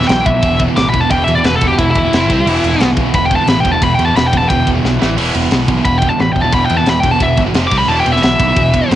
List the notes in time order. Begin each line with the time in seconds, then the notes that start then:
Already playing: E2 B2 E3
0.01 E2 B2, snare
0.07 B1 E2 B2 G5, snare, ride
0.24 B1 E2 B2 E5, kick, ride
0.34 E2 B2
0.42 E1 E2 B2, kick, ride
0.59 E2 B2, kick, ride
0.67 E2 B2
0.76 A1 E2 B2 D6, snare, ride
0.90 E2 B2 B5
0.94 E1, kick, ride
1.00 E2 B2 A5
1.10 E1 E2 B2 E3 G5, kick, ride
1.24 E2 B2 E5, ride
1.28 E2
1.35 E2 B2 D5
1.44 E1 E2 B2 B4, snare, ride
1.56 A4
1.61 E1 E2 B2, kick, ride
1.67 E2 B2 G4
1.78 E1 E2 B2 E4, kick, ride
1.91 E4
1.95 E1 E2 B2, kick, ride
2.04 E2 B2
2.11 F1 F2 C3 F3, snare, ride
2.29 C2 C3 G3 C4, kick, ride
2.38 C3 G3
2.46 E1 E2 B2 E3, crash
2.63 E1 E2 B2, ride
2.71 E2 B2
2.80 B1 E2 B2, snare, ride
2.97 B1 E2 B2, kick, ride
3.06 E2 B2
3.14 E1 E2 B2 B5, kick, ride
3.25 G5
3.31 E2 B2, kick, ride
3.36 E2 B2 A5
3.47 A1 E2 B2 B5, snare, ride
3.60 E2 B2 G5
3.65 E1, kick, ride
3.72 E2 B2 A5
3.82 E1 E2 B2 E3 B5, kick, ride
3.95 G5
3.99 E2 B2, ride
4.05 E2 B2 A5
4.16 E1 E2 B2 B5, snare, ride
4.27 G5
4.32 E1 E2 B2, kick, ride
4.37 A5
4.41 E2 B2
4.49 E1 E2 B2 G5, kick, ride
4.67 E1 E2 B2, kick, ride
4.76 E2 B2
4.85 B1 E2 B2, snare
5.02 A1 A2 E3 A3, snare
5.10 A2 E3
5.18 E1 E2 B2 E3, crash
5.35 E1 E2 B2, ride
5.44 E2 B2
5.51 B1 E2 B2, snare, ride
5.68 B1 E2 B2, kick, ride
5.77 E2 B2
5.85 E1 E2 B2 B5, kick, ride
5.99 G5, kick, ride
6.05 E2 B2
6.09 E2 B2 A5
6.19 A1 E2 B2 B5, snare, ride
6.33 E1 E2 B2 G5, kick, ride
6.42 E2 B2 A5
6.52 E1 E2 B2 E3 B5, kick, ride
6.66 G5, ride
6.70 E2 B2
6.77 E2 B2 A5
6.86 E1 E2 B2 B5, snare, ride
7.00 G5, kick, ride
7.04 E1 E2 B2
7.11 E2 B2 A5
7.20 E1 E2 B2 E5, kick, ride
7.37 G1 E2 B2, kick, ride
7.46 E2 B2
7.54 F1 F2 C3 F3, snare, ride
7.67 D6, crash
7.71 C2 C3 G3 C4, kick
7.78 C3 G3 B5
7.88 E1 E2 B2 E3 A5
8.00 G5
8.06 E1 E2 B2, ride
8.13 E2 B2 E5, snare
8.22 B1 E2 B2 E5, snare, ride
8.39 B1 E2 B2, kick, ride
8.49 E2 B2
8.56 E1 E2 B2, kick, ride
8.73 E2 B2, kick, ride
8.81 E2 B2
8.90 A1 E2 B2, snare, ride